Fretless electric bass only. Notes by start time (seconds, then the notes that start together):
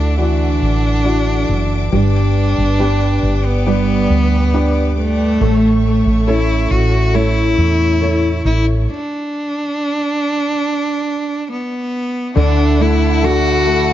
Already playing: D2
0.62 A1
1.49 F#1
1.92 G1
2.58 G1
3.23 G1
4.10 D2
5.41 A1
6.06 A1
6.71 A1
7.58 E2
8.45 A1
12.36 D2